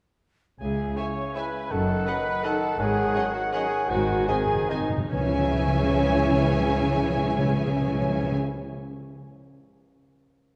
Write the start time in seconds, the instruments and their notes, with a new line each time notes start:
0.60 double bass section C#2, cello section C#2, bassoon C#3, viola section G#4, clarinet E5, flute G#5, cor anglais G#5
0.96 bassoon C#3, french horn section G#3 E4, viola section C#5, violin section C#5 E5 G#5, clarinet E5, cor anglais G#5, flute C#6
1.35 french horn section G#3 E4, viola section B4, violin section C#5 E5 G#5, flute B5
1.70 double bass section F#1, cello section F#2, bassoon D#3, viola section A4, clarinet D#5, cor anglais F#5, flute A5
2.07 french horn section F#3 D#4, viola section B4, violin section D#5 F#5, flute B5
2.43 bassoon D#3, french horn section F#3 D#4, viola section A4, violin section D#5 F#5, clarinet D#5, cor anglais F#5, flute A5
2.79 double bass section G#1, cello section G#2, bassoon D#3, viola section G#4, clarinet C#5, cor anglais F#5, flute G#5
3.15 french horn section F#3 C#4, violin section C#5 D#5 F#5
3.34 viola section F#4, flute F#5
3.53 bassoon D#3, french horn section F#3 C#4, viola section G#4, violin section C#5 D#5 F#5, clarinet C#5, cor anglais F#5, flute G#5
3.89 double bass section G#1, timpani G#2, cello section G#2, bassoon D#3, viola section F#4, clarinet C5, flute F#5, cor anglais G#5
3.96 timpani G#2
4.04 timpani G#2
4.12 timpani G#2
4.20 timpani G#2
4.26 timpani G#2, french horn section D#3 C4, bassoon D#3, viola section G#4, clarinet C5, violin section C5 D#5 G#5, flute G#5, cor anglais G#5
4.37 timpani G#2
4.46 timpani G#2
4.55 timpani G#2
4.63 timpani G#2
4.69 timpani G#2, bassoon D#3, french horn section D#3 C4, viola section D#4, violin section C5 D#5 G#5, clarinet C5, flute D#5, cor anglais G#5
4.80 timpani G#2
4.90 timpani G#2
4.98 timpani G#2
5.12 double bass section C#2, cello section C#3, timpani C#3, bassoon E3, french horn section E3 C#4, viola section C#4, flute C#5, clarinet C#5, violin section C#5 E5 G#5, cor anglais G#5
5.19 timpani C#3
5.26 timpani C#3
5.33 timpani C#3
5.39 timpani C#3
5.46 timpani C#3
5.53 timpani C#3
5.60 timpani C#3
5.67 timpani C#3
5.75 timpani C#3
5.82 timpani C#3
5.89 timpani C#3
5.96 timpani C#3
6.03 timpani C#3
6.10 timpani C#3
6.17 timpani C#3
6.25 timpani C#3
6.31 timpani C#3
6.38 timpani C#3
6.46 timpani C#3
6.53 timpani C#3
6.60 timpani C#3
6.67 timpani C#3
6.75 timpani C#3
6.82 timpani C#3
6.89 timpani C#3
6.96 timpani C#3
7.03 timpani C#3
7.10 timpani C#3
7.17 timpani C#3
7.24 timpani C#3
7.31 timpani C#3
7.38 timpani C#3
7.45 timpani C#3
7.52 timpani C#3
7.59 timpani C#3
7.67 timpani C#3
7.73 timpani C#3
7.81 timpani C#3
7.88 timpani C#3
7.95 timpani C#3
8.02 timpani C#3
8.09 timpani C#3
8.17 timpani C#3
8.24 timpani C#3
8.32 timpani C#3